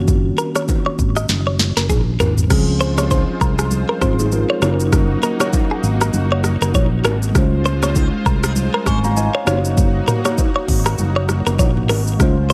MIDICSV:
0, 0, Header, 1, 6, 480
1, 0, Start_track
1, 0, Tempo, 606061
1, 62, Time_signature, 4, 2, 24, 8
1, 9925, End_track
2, 0, Start_track
2, 0, Title_t, "Clean electric guitar"
2, 0, Program_c, 0, 27
2, 303, Note_on_c, 0, 70, 73
2, 396, Note_off_c, 0, 70, 0
2, 443, Note_on_c, 0, 73, 79
2, 510, Note_off_c, 0, 73, 0
2, 683, Note_on_c, 0, 73, 68
2, 750, Note_off_c, 0, 73, 0
2, 923, Note_on_c, 0, 75, 81
2, 990, Note_off_c, 0, 75, 0
2, 1163, Note_on_c, 0, 73, 79
2, 1230, Note_off_c, 0, 73, 0
2, 1401, Note_on_c, 0, 70, 76
2, 1469, Note_off_c, 0, 70, 0
2, 1502, Note_on_c, 0, 68, 68
2, 1596, Note_off_c, 0, 68, 0
2, 1743, Note_on_c, 0, 70, 77
2, 1836, Note_off_c, 0, 70, 0
2, 2223, Note_on_c, 0, 72, 81
2, 2316, Note_off_c, 0, 72, 0
2, 2363, Note_on_c, 0, 73, 78
2, 2430, Note_off_c, 0, 73, 0
2, 2463, Note_on_c, 0, 72, 71
2, 2556, Note_off_c, 0, 72, 0
2, 2703, Note_on_c, 0, 70, 85
2, 2796, Note_off_c, 0, 70, 0
2, 2841, Note_on_c, 0, 68, 78
2, 2909, Note_off_c, 0, 68, 0
2, 3082, Note_on_c, 0, 70, 81
2, 3149, Note_off_c, 0, 70, 0
2, 3183, Note_on_c, 0, 72, 72
2, 3276, Note_off_c, 0, 72, 0
2, 3563, Note_on_c, 0, 73, 80
2, 3630, Note_off_c, 0, 73, 0
2, 3664, Note_on_c, 0, 73, 85
2, 3757, Note_off_c, 0, 73, 0
2, 4144, Note_on_c, 0, 70, 74
2, 4237, Note_off_c, 0, 70, 0
2, 4284, Note_on_c, 0, 73, 82
2, 4351, Note_off_c, 0, 73, 0
2, 4524, Note_on_c, 0, 68, 73
2, 4591, Note_off_c, 0, 68, 0
2, 4764, Note_on_c, 0, 70, 86
2, 4831, Note_off_c, 0, 70, 0
2, 5005, Note_on_c, 0, 73, 87
2, 5071, Note_off_c, 0, 73, 0
2, 5245, Note_on_c, 0, 70, 80
2, 5311, Note_off_c, 0, 70, 0
2, 5345, Note_on_c, 0, 73, 78
2, 5438, Note_off_c, 0, 73, 0
2, 5584, Note_on_c, 0, 70, 85
2, 5677, Note_off_c, 0, 70, 0
2, 6064, Note_on_c, 0, 72, 81
2, 6157, Note_off_c, 0, 72, 0
2, 6204, Note_on_c, 0, 73, 75
2, 6303, Note_off_c, 0, 73, 0
2, 6303, Note_on_c, 0, 72, 78
2, 6396, Note_off_c, 0, 72, 0
2, 6543, Note_on_c, 0, 70, 89
2, 6683, Note_off_c, 0, 70, 0
2, 6683, Note_on_c, 0, 68, 79
2, 6750, Note_off_c, 0, 68, 0
2, 6924, Note_on_c, 0, 70, 84
2, 7025, Note_off_c, 0, 70, 0
2, 7025, Note_on_c, 0, 72, 75
2, 7117, Note_off_c, 0, 72, 0
2, 7402, Note_on_c, 0, 73, 80
2, 7470, Note_off_c, 0, 73, 0
2, 7504, Note_on_c, 0, 73, 87
2, 7597, Note_off_c, 0, 73, 0
2, 7982, Note_on_c, 0, 70, 72
2, 8076, Note_off_c, 0, 70, 0
2, 8122, Note_on_c, 0, 73, 81
2, 8190, Note_off_c, 0, 73, 0
2, 8361, Note_on_c, 0, 73, 72
2, 8429, Note_off_c, 0, 73, 0
2, 8601, Note_on_c, 0, 70, 80
2, 8669, Note_off_c, 0, 70, 0
2, 8841, Note_on_c, 0, 73, 90
2, 8908, Note_off_c, 0, 73, 0
2, 9081, Note_on_c, 0, 70, 76
2, 9149, Note_off_c, 0, 70, 0
2, 9181, Note_on_c, 0, 73, 74
2, 9275, Note_off_c, 0, 73, 0
2, 9421, Note_on_c, 0, 70, 86
2, 9514, Note_off_c, 0, 70, 0
2, 9925, End_track
3, 0, Start_track
3, 0, Title_t, "Analog synth pad"
3, 0, Program_c, 1, 89
3, 1980, Note_on_c, 1, 56, 76
3, 1980, Note_on_c, 1, 65, 91
3, 1980, Note_on_c, 1, 72, 75
3, 3644, Note_off_c, 1, 56, 0
3, 3644, Note_off_c, 1, 65, 0
3, 3644, Note_off_c, 1, 72, 0
3, 3661, Note_on_c, 1, 58, 73
3, 3662, Note_on_c, 1, 63, 73
3, 3662, Note_on_c, 1, 66, 91
3, 5800, Note_off_c, 1, 58, 0
3, 5800, Note_off_c, 1, 63, 0
3, 5800, Note_off_c, 1, 66, 0
3, 5823, Note_on_c, 1, 56, 75
3, 5823, Note_on_c, 1, 65, 89
3, 5823, Note_on_c, 1, 72, 76
3, 7485, Note_off_c, 1, 56, 0
3, 7485, Note_off_c, 1, 65, 0
3, 7485, Note_off_c, 1, 72, 0
3, 7503, Note_on_c, 1, 66, 86
3, 7504, Note_on_c, 1, 58, 75
3, 7504, Note_on_c, 1, 63, 75
3, 9641, Note_off_c, 1, 58, 0
3, 9641, Note_off_c, 1, 63, 0
3, 9641, Note_off_c, 1, 66, 0
3, 9663, Note_on_c, 1, 56, 75
3, 9663, Note_on_c, 1, 72, 74
3, 9664, Note_on_c, 1, 65, 88
3, 9925, Note_off_c, 1, 56, 0
3, 9925, Note_off_c, 1, 65, 0
3, 9925, Note_off_c, 1, 72, 0
3, 9925, End_track
4, 0, Start_track
4, 0, Title_t, "Tine electric piano"
4, 0, Program_c, 2, 4
4, 0, Control_c, 2, 64, 127
4, 0, Note_on_c, 2, 51, 73
4, 0, Note_on_c, 2, 58, 67
4, 0, Note_on_c, 2, 61, 65
4, 0, Note_on_c, 2, 66, 75
4, 1699, Note_off_c, 2, 51, 0
4, 1706, Note_off_c, 2, 58, 0
4, 1713, Note_off_c, 2, 61, 0
4, 1719, Note_off_c, 2, 66, 0
4, 1961, Note_on_c, 2, 53, 74
4, 1975, Note_on_c, 2, 60, 69
4, 1988, Note_on_c, 2, 61, 70
4, 1991, Control_c, 2, 64, 0
4, 2001, Note_on_c, 2, 68, 81
4, 2115, Control_c, 2, 64, 127
4, 2919, Note_off_c, 2, 60, 0
4, 2925, Note_off_c, 2, 61, 0
4, 2932, Note_off_c, 2, 68, 0
4, 3181, Note_on_c, 2, 65, 67
4, 3186, Note_on_c, 2, 60, 57
4, 3314, Note_off_c, 2, 65, 0
4, 3316, Note_off_c, 2, 60, 0
4, 3320, Note_on_c, 2, 68, 70
4, 3325, Note_on_c, 2, 63, 58
4, 3416, Note_off_c, 2, 68, 0
4, 3419, Note_off_c, 2, 63, 0
4, 3420, Note_on_c, 2, 70, 75
4, 3425, Note_on_c, 2, 65, 64
4, 3553, Note_off_c, 2, 70, 0
4, 3556, Note_off_c, 2, 65, 0
4, 3561, Note_on_c, 2, 72, 67
4, 3566, Note_on_c, 2, 65, 56
4, 3620, Note_off_c, 2, 53, 0
4, 3643, Note_on_c, 2, 54, 76
4, 3656, Note_on_c, 2, 61, 67
4, 3669, Note_on_c, 2, 63, 67
4, 3673, Control_c, 2, 64, 0
4, 3682, Note_on_c, 2, 69, 66
4, 3731, Note_off_c, 2, 69, 0
4, 3734, Note_on_c, 2, 70, 81
4, 3789, Note_off_c, 2, 72, 0
4, 3791, Note_off_c, 2, 65, 0
4, 3811, Control_c, 2, 64, 127
4, 5540, Note_off_c, 2, 54, 0
4, 5547, Note_off_c, 2, 61, 0
4, 5554, Note_off_c, 2, 63, 0
4, 5586, Note_off_c, 2, 70, 0
4, 5803, Note_on_c, 2, 56, 81
4, 5816, Note_on_c, 2, 61, 67
4, 5829, Note_on_c, 2, 65, 73
4, 5832, Control_c, 2, 64, 0
4, 5842, Note_on_c, 2, 72, 83
4, 5990, Control_c, 2, 64, 127
4, 6773, Note_off_c, 2, 72, 0
4, 7022, Note_on_c, 2, 85, 69
4, 7026, Note_on_c, 2, 80, 60
4, 7154, Note_off_c, 2, 85, 0
4, 7156, Note_off_c, 2, 80, 0
4, 7162, Note_on_c, 2, 82, 67
4, 7167, Note_on_c, 2, 77, 59
4, 7257, Note_off_c, 2, 82, 0
4, 7260, Note_off_c, 2, 77, 0
4, 7262, Note_on_c, 2, 80, 76
4, 7266, Note_on_c, 2, 75, 62
4, 7394, Note_off_c, 2, 80, 0
4, 7396, Note_off_c, 2, 75, 0
4, 7402, Note_on_c, 2, 77, 69
4, 7407, Note_on_c, 2, 72, 56
4, 7460, Note_off_c, 2, 56, 0
4, 7467, Note_off_c, 2, 61, 0
4, 7474, Note_off_c, 2, 65, 0
4, 7482, Note_on_c, 2, 58, 71
4, 7494, Note_on_c, 2, 63, 70
4, 7508, Note_on_c, 2, 66, 69
4, 7512, Control_c, 2, 64, 0
4, 7521, Note_on_c, 2, 73, 83
4, 7629, Note_off_c, 2, 77, 0
4, 7632, Note_off_c, 2, 72, 0
4, 7642, Control_c, 2, 64, 127
4, 9380, Note_off_c, 2, 58, 0
4, 9386, Note_off_c, 2, 63, 0
4, 9393, Note_off_c, 2, 66, 0
4, 9400, Note_off_c, 2, 73, 0
4, 9641, Note_on_c, 2, 56, 74
4, 9654, Note_on_c, 2, 61, 70
4, 9668, Note_on_c, 2, 65, 69
4, 9670, Control_c, 2, 64, 0
4, 9681, Note_on_c, 2, 72, 87
4, 9809, Control_c, 2, 64, 127
4, 9925, Note_off_c, 2, 56, 0
4, 9925, Note_off_c, 2, 61, 0
4, 9925, Note_off_c, 2, 65, 0
4, 9925, Note_off_c, 2, 72, 0
4, 9925, End_track
5, 0, Start_track
5, 0, Title_t, "Fingered electric bass"
5, 0, Program_c, 3, 33
5, 0, Note_on_c, 3, 30, 92
5, 242, Note_off_c, 3, 30, 0
5, 783, Note_on_c, 3, 32, 87
5, 992, Note_off_c, 3, 32, 0
5, 1022, Note_on_c, 3, 30, 102
5, 1354, Note_off_c, 3, 30, 0
5, 1400, Note_on_c, 3, 30, 77
5, 1489, Note_off_c, 3, 30, 0
5, 1501, Note_on_c, 3, 34, 87
5, 1711, Note_off_c, 3, 34, 0
5, 1741, Note_on_c, 3, 32, 94
5, 1951, Note_off_c, 3, 32, 0
5, 1982, Note_on_c, 3, 37, 110
5, 2570, Note_off_c, 3, 37, 0
5, 2702, Note_on_c, 3, 36, 94
5, 3034, Note_off_c, 3, 36, 0
5, 3181, Note_on_c, 3, 32, 87
5, 3513, Note_off_c, 3, 32, 0
5, 3661, Note_on_c, 3, 30, 96
5, 4082, Note_off_c, 3, 30, 0
5, 4621, Note_on_c, 3, 32, 97
5, 4831, Note_off_c, 3, 32, 0
5, 4862, Note_on_c, 3, 30, 108
5, 5194, Note_off_c, 3, 30, 0
5, 5241, Note_on_c, 3, 30, 84
5, 5329, Note_off_c, 3, 30, 0
5, 5341, Note_on_c, 3, 34, 88
5, 5551, Note_off_c, 3, 34, 0
5, 5581, Note_on_c, 3, 32, 94
5, 5792, Note_off_c, 3, 32, 0
5, 5822, Note_on_c, 3, 37, 107
5, 6410, Note_off_c, 3, 37, 0
5, 6541, Note_on_c, 3, 36, 94
5, 6873, Note_off_c, 3, 36, 0
5, 7021, Note_on_c, 3, 32, 90
5, 7353, Note_off_c, 3, 32, 0
5, 7501, Note_on_c, 3, 30, 99
5, 7921, Note_off_c, 3, 30, 0
5, 8462, Note_on_c, 3, 32, 96
5, 8672, Note_off_c, 3, 32, 0
5, 8701, Note_on_c, 3, 30, 100
5, 9033, Note_off_c, 3, 30, 0
5, 9081, Note_on_c, 3, 30, 83
5, 9169, Note_off_c, 3, 30, 0
5, 9179, Note_on_c, 3, 34, 93
5, 9390, Note_off_c, 3, 34, 0
5, 9420, Note_on_c, 3, 32, 92
5, 9631, Note_off_c, 3, 32, 0
5, 9661, Note_on_c, 3, 37, 107
5, 9925, Note_off_c, 3, 37, 0
5, 9925, End_track
6, 0, Start_track
6, 0, Title_t, "Drums"
6, 62, Note_on_c, 9, 36, 118
6, 62, Note_on_c, 9, 82, 69
6, 67, Note_on_c, 9, 64, 75
6, 141, Note_off_c, 9, 36, 0
6, 141, Note_off_c, 9, 82, 0
6, 146, Note_off_c, 9, 64, 0
6, 302, Note_on_c, 9, 82, 52
6, 307, Note_on_c, 9, 61, 53
6, 381, Note_off_c, 9, 82, 0
6, 386, Note_off_c, 9, 61, 0
6, 439, Note_on_c, 9, 37, 89
6, 439, Note_on_c, 9, 82, 71
6, 518, Note_off_c, 9, 82, 0
6, 519, Note_off_c, 9, 37, 0
6, 541, Note_on_c, 9, 82, 68
6, 543, Note_on_c, 9, 36, 83
6, 549, Note_on_c, 9, 60, 76
6, 620, Note_off_c, 9, 82, 0
6, 623, Note_off_c, 9, 36, 0
6, 628, Note_off_c, 9, 60, 0
6, 782, Note_on_c, 9, 36, 87
6, 783, Note_on_c, 9, 82, 50
6, 861, Note_off_c, 9, 36, 0
6, 862, Note_off_c, 9, 82, 0
6, 921, Note_on_c, 9, 82, 81
6, 922, Note_on_c, 9, 37, 92
6, 1000, Note_off_c, 9, 82, 0
6, 1002, Note_off_c, 9, 37, 0
6, 1019, Note_on_c, 9, 82, 75
6, 1021, Note_on_c, 9, 64, 76
6, 1023, Note_on_c, 9, 38, 57
6, 1099, Note_off_c, 9, 82, 0
6, 1100, Note_off_c, 9, 64, 0
6, 1102, Note_off_c, 9, 38, 0
6, 1262, Note_on_c, 9, 82, 52
6, 1263, Note_on_c, 9, 38, 66
6, 1263, Note_on_c, 9, 64, 71
6, 1341, Note_off_c, 9, 82, 0
6, 1342, Note_off_c, 9, 38, 0
6, 1342, Note_off_c, 9, 64, 0
6, 1402, Note_on_c, 9, 38, 61
6, 1403, Note_on_c, 9, 82, 64
6, 1404, Note_on_c, 9, 61, 67
6, 1481, Note_off_c, 9, 38, 0
6, 1482, Note_off_c, 9, 82, 0
6, 1483, Note_off_c, 9, 61, 0
6, 1501, Note_on_c, 9, 36, 104
6, 1502, Note_on_c, 9, 82, 69
6, 1503, Note_on_c, 9, 45, 83
6, 1505, Note_on_c, 9, 60, 72
6, 1580, Note_off_c, 9, 36, 0
6, 1582, Note_off_c, 9, 82, 0
6, 1583, Note_off_c, 9, 45, 0
6, 1584, Note_off_c, 9, 60, 0
6, 1742, Note_on_c, 9, 82, 52
6, 1744, Note_on_c, 9, 43, 96
6, 1744, Note_on_c, 9, 60, 60
6, 1744, Note_on_c, 9, 61, 87
6, 1821, Note_off_c, 9, 82, 0
6, 1823, Note_off_c, 9, 43, 0
6, 1824, Note_off_c, 9, 60, 0
6, 1824, Note_off_c, 9, 61, 0
6, 1882, Note_on_c, 9, 43, 88
6, 1883, Note_on_c, 9, 82, 70
6, 1961, Note_off_c, 9, 43, 0
6, 1962, Note_off_c, 9, 82, 0
6, 1982, Note_on_c, 9, 36, 121
6, 1982, Note_on_c, 9, 82, 72
6, 1983, Note_on_c, 9, 37, 98
6, 1983, Note_on_c, 9, 49, 102
6, 1986, Note_on_c, 9, 64, 78
6, 2061, Note_off_c, 9, 36, 0
6, 2062, Note_off_c, 9, 37, 0
6, 2062, Note_off_c, 9, 49, 0
6, 2062, Note_off_c, 9, 82, 0
6, 2065, Note_off_c, 9, 64, 0
6, 2221, Note_on_c, 9, 82, 57
6, 2226, Note_on_c, 9, 61, 56
6, 2301, Note_off_c, 9, 82, 0
6, 2305, Note_off_c, 9, 61, 0
6, 2358, Note_on_c, 9, 61, 76
6, 2359, Note_on_c, 9, 82, 74
6, 2360, Note_on_c, 9, 37, 92
6, 2437, Note_off_c, 9, 61, 0
6, 2438, Note_off_c, 9, 82, 0
6, 2439, Note_off_c, 9, 37, 0
6, 2461, Note_on_c, 9, 82, 73
6, 2463, Note_on_c, 9, 36, 90
6, 2468, Note_on_c, 9, 60, 77
6, 2540, Note_off_c, 9, 82, 0
6, 2542, Note_off_c, 9, 36, 0
6, 2547, Note_off_c, 9, 60, 0
6, 2702, Note_on_c, 9, 36, 87
6, 2703, Note_on_c, 9, 82, 53
6, 2781, Note_off_c, 9, 36, 0
6, 2782, Note_off_c, 9, 82, 0
6, 2841, Note_on_c, 9, 82, 79
6, 2842, Note_on_c, 9, 37, 94
6, 2920, Note_off_c, 9, 82, 0
6, 2922, Note_off_c, 9, 37, 0
6, 2939, Note_on_c, 9, 82, 76
6, 2940, Note_on_c, 9, 64, 81
6, 3018, Note_off_c, 9, 82, 0
6, 3019, Note_off_c, 9, 64, 0
6, 3179, Note_on_c, 9, 37, 91
6, 3181, Note_on_c, 9, 36, 83
6, 3181, Note_on_c, 9, 82, 55
6, 3183, Note_on_c, 9, 64, 77
6, 3259, Note_off_c, 9, 37, 0
6, 3260, Note_off_c, 9, 36, 0
6, 3260, Note_off_c, 9, 82, 0
6, 3262, Note_off_c, 9, 64, 0
6, 3321, Note_on_c, 9, 82, 67
6, 3324, Note_on_c, 9, 61, 70
6, 3400, Note_off_c, 9, 82, 0
6, 3403, Note_off_c, 9, 61, 0
6, 3420, Note_on_c, 9, 82, 74
6, 3425, Note_on_c, 9, 60, 69
6, 3499, Note_off_c, 9, 82, 0
6, 3504, Note_off_c, 9, 60, 0
6, 3659, Note_on_c, 9, 37, 93
6, 3659, Note_on_c, 9, 82, 54
6, 3664, Note_on_c, 9, 60, 62
6, 3664, Note_on_c, 9, 61, 88
6, 3738, Note_off_c, 9, 37, 0
6, 3738, Note_off_c, 9, 82, 0
6, 3744, Note_off_c, 9, 60, 0
6, 3744, Note_off_c, 9, 61, 0
6, 3801, Note_on_c, 9, 82, 77
6, 3881, Note_off_c, 9, 82, 0
6, 3901, Note_on_c, 9, 36, 125
6, 3901, Note_on_c, 9, 37, 99
6, 3901, Note_on_c, 9, 82, 72
6, 3905, Note_on_c, 9, 64, 83
6, 3980, Note_off_c, 9, 36, 0
6, 3980, Note_off_c, 9, 37, 0
6, 3980, Note_off_c, 9, 82, 0
6, 3984, Note_off_c, 9, 64, 0
6, 4140, Note_on_c, 9, 82, 57
6, 4145, Note_on_c, 9, 61, 57
6, 4220, Note_off_c, 9, 82, 0
6, 4225, Note_off_c, 9, 61, 0
6, 4278, Note_on_c, 9, 61, 78
6, 4278, Note_on_c, 9, 82, 72
6, 4279, Note_on_c, 9, 37, 95
6, 4357, Note_off_c, 9, 61, 0
6, 4357, Note_off_c, 9, 82, 0
6, 4358, Note_off_c, 9, 37, 0
6, 4380, Note_on_c, 9, 82, 69
6, 4382, Note_on_c, 9, 36, 87
6, 4388, Note_on_c, 9, 60, 78
6, 4459, Note_off_c, 9, 82, 0
6, 4462, Note_off_c, 9, 36, 0
6, 4468, Note_off_c, 9, 60, 0
6, 4622, Note_on_c, 9, 82, 55
6, 4701, Note_off_c, 9, 82, 0
6, 4761, Note_on_c, 9, 82, 79
6, 4762, Note_on_c, 9, 37, 94
6, 4840, Note_off_c, 9, 82, 0
6, 4841, Note_off_c, 9, 37, 0
6, 4858, Note_on_c, 9, 82, 75
6, 4860, Note_on_c, 9, 64, 84
6, 4937, Note_off_c, 9, 82, 0
6, 4939, Note_off_c, 9, 64, 0
6, 5099, Note_on_c, 9, 37, 93
6, 5101, Note_on_c, 9, 82, 57
6, 5103, Note_on_c, 9, 64, 73
6, 5179, Note_off_c, 9, 37, 0
6, 5180, Note_off_c, 9, 82, 0
6, 5182, Note_off_c, 9, 64, 0
6, 5241, Note_on_c, 9, 82, 65
6, 5244, Note_on_c, 9, 61, 75
6, 5321, Note_off_c, 9, 82, 0
6, 5323, Note_off_c, 9, 61, 0
6, 5340, Note_on_c, 9, 36, 103
6, 5341, Note_on_c, 9, 82, 76
6, 5345, Note_on_c, 9, 60, 71
6, 5419, Note_off_c, 9, 36, 0
6, 5420, Note_off_c, 9, 82, 0
6, 5424, Note_off_c, 9, 60, 0
6, 5580, Note_on_c, 9, 37, 97
6, 5580, Note_on_c, 9, 82, 56
6, 5585, Note_on_c, 9, 60, 68
6, 5585, Note_on_c, 9, 61, 92
6, 5659, Note_off_c, 9, 37, 0
6, 5659, Note_off_c, 9, 82, 0
6, 5665, Note_off_c, 9, 60, 0
6, 5665, Note_off_c, 9, 61, 0
6, 5722, Note_on_c, 9, 82, 76
6, 5801, Note_off_c, 9, 82, 0
6, 5822, Note_on_c, 9, 36, 122
6, 5822, Note_on_c, 9, 37, 98
6, 5822, Note_on_c, 9, 82, 70
6, 5827, Note_on_c, 9, 64, 84
6, 5901, Note_off_c, 9, 36, 0
6, 5901, Note_off_c, 9, 37, 0
6, 5901, Note_off_c, 9, 82, 0
6, 5906, Note_off_c, 9, 64, 0
6, 6061, Note_on_c, 9, 82, 56
6, 6067, Note_on_c, 9, 61, 57
6, 6140, Note_off_c, 9, 82, 0
6, 6146, Note_off_c, 9, 61, 0
6, 6198, Note_on_c, 9, 37, 95
6, 6198, Note_on_c, 9, 82, 73
6, 6199, Note_on_c, 9, 61, 76
6, 6277, Note_off_c, 9, 82, 0
6, 6278, Note_off_c, 9, 37, 0
6, 6278, Note_off_c, 9, 61, 0
6, 6300, Note_on_c, 9, 82, 71
6, 6303, Note_on_c, 9, 36, 92
6, 6309, Note_on_c, 9, 60, 76
6, 6379, Note_off_c, 9, 82, 0
6, 6382, Note_off_c, 9, 36, 0
6, 6388, Note_off_c, 9, 60, 0
6, 6541, Note_on_c, 9, 82, 51
6, 6542, Note_on_c, 9, 36, 89
6, 6621, Note_off_c, 9, 36, 0
6, 6621, Note_off_c, 9, 82, 0
6, 6680, Note_on_c, 9, 82, 83
6, 6681, Note_on_c, 9, 37, 98
6, 6759, Note_off_c, 9, 82, 0
6, 6761, Note_off_c, 9, 37, 0
6, 6778, Note_on_c, 9, 82, 76
6, 6780, Note_on_c, 9, 64, 80
6, 6857, Note_off_c, 9, 82, 0
6, 6860, Note_off_c, 9, 64, 0
6, 7019, Note_on_c, 9, 37, 90
6, 7020, Note_on_c, 9, 82, 55
6, 7021, Note_on_c, 9, 36, 85
6, 7023, Note_on_c, 9, 64, 74
6, 7098, Note_off_c, 9, 37, 0
6, 7100, Note_off_c, 9, 36, 0
6, 7100, Note_off_c, 9, 82, 0
6, 7103, Note_off_c, 9, 64, 0
6, 7160, Note_on_c, 9, 82, 68
6, 7165, Note_on_c, 9, 61, 69
6, 7240, Note_off_c, 9, 82, 0
6, 7244, Note_off_c, 9, 61, 0
6, 7260, Note_on_c, 9, 82, 73
6, 7266, Note_on_c, 9, 60, 72
6, 7339, Note_off_c, 9, 82, 0
6, 7345, Note_off_c, 9, 60, 0
6, 7500, Note_on_c, 9, 37, 96
6, 7500, Note_on_c, 9, 82, 56
6, 7505, Note_on_c, 9, 60, 66
6, 7505, Note_on_c, 9, 61, 93
6, 7579, Note_off_c, 9, 37, 0
6, 7579, Note_off_c, 9, 82, 0
6, 7585, Note_off_c, 9, 60, 0
6, 7585, Note_off_c, 9, 61, 0
6, 7642, Note_on_c, 9, 82, 71
6, 7721, Note_off_c, 9, 82, 0
6, 7741, Note_on_c, 9, 82, 71
6, 7742, Note_on_c, 9, 36, 127
6, 7747, Note_on_c, 9, 64, 83
6, 7821, Note_off_c, 9, 36, 0
6, 7821, Note_off_c, 9, 82, 0
6, 7826, Note_off_c, 9, 64, 0
6, 7981, Note_on_c, 9, 82, 55
6, 7984, Note_on_c, 9, 45, 104
6, 7987, Note_on_c, 9, 61, 54
6, 8060, Note_off_c, 9, 82, 0
6, 8063, Note_off_c, 9, 45, 0
6, 8067, Note_off_c, 9, 61, 0
6, 8119, Note_on_c, 9, 37, 90
6, 8119, Note_on_c, 9, 82, 75
6, 8120, Note_on_c, 9, 61, 75
6, 8198, Note_off_c, 9, 37, 0
6, 8198, Note_off_c, 9, 82, 0
6, 8199, Note_off_c, 9, 61, 0
6, 8220, Note_on_c, 9, 82, 71
6, 8223, Note_on_c, 9, 36, 91
6, 8230, Note_on_c, 9, 60, 78
6, 8299, Note_off_c, 9, 82, 0
6, 8302, Note_off_c, 9, 36, 0
6, 8309, Note_off_c, 9, 60, 0
6, 8462, Note_on_c, 9, 36, 88
6, 8462, Note_on_c, 9, 46, 75
6, 8462, Note_on_c, 9, 82, 53
6, 8541, Note_off_c, 9, 36, 0
6, 8541, Note_off_c, 9, 46, 0
6, 8541, Note_off_c, 9, 82, 0
6, 8600, Note_on_c, 9, 82, 82
6, 8602, Note_on_c, 9, 37, 98
6, 8680, Note_off_c, 9, 82, 0
6, 8681, Note_off_c, 9, 37, 0
6, 8698, Note_on_c, 9, 82, 78
6, 8701, Note_on_c, 9, 64, 83
6, 8777, Note_off_c, 9, 82, 0
6, 8780, Note_off_c, 9, 64, 0
6, 8940, Note_on_c, 9, 37, 95
6, 8941, Note_on_c, 9, 82, 59
6, 8944, Note_on_c, 9, 64, 69
6, 9019, Note_off_c, 9, 37, 0
6, 9020, Note_off_c, 9, 82, 0
6, 9023, Note_off_c, 9, 64, 0
6, 9081, Note_on_c, 9, 82, 67
6, 9085, Note_on_c, 9, 61, 72
6, 9160, Note_off_c, 9, 82, 0
6, 9164, Note_off_c, 9, 61, 0
6, 9180, Note_on_c, 9, 36, 104
6, 9180, Note_on_c, 9, 82, 72
6, 9186, Note_on_c, 9, 60, 72
6, 9259, Note_off_c, 9, 36, 0
6, 9259, Note_off_c, 9, 82, 0
6, 9265, Note_off_c, 9, 60, 0
6, 9323, Note_on_c, 9, 45, 95
6, 9402, Note_off_c, 9, 45, 0
6, 9420, Note_on_c, 9, 37, 93
6, 9420, Note_on_c, 9, 46, 77
6, 9420, Note_on_c, 9, 82, 57
6, 9425, Note_on_c, 9, 60, 63
6, 9425, Note_on_c, 9, 61, 89
6, 9499, Note_off_c, 9, 37, 0
6, 9499, Note_off_c, 9, 46, 0
6, 9499, Note_off_c, 9, 82, 0
6, 9504, Note_off_c, 9, 60, 0
6, 9504, Note_off_c, 9, 61, 0
6, 9561, Note_on_c, 9, 82, 77
6, 9640, Note_off_c, 9, 82, 0
6, 9661, Note_on_c, 9, 36, 119
6, 9661, Note_on_c, 9, 37, 98
6, 9661, Note_on_c, 9, 82, 68
6, 9666, Note_on_c, 9, 64, 83
6, 9740, Note_off_c, 9, 36, 0
6, 9740, Note_off_c, 9, 37, 0
6, 9740, Note_off_c, 9, 82, 0
6, 9745, Note_off_c, 9, 64, 0
6, 9900, Note_on_c, 9, 82, 56
6, 9925, Note_off_c, 9, 82, 0
6, 9925, End_track
0, 0, End_of_file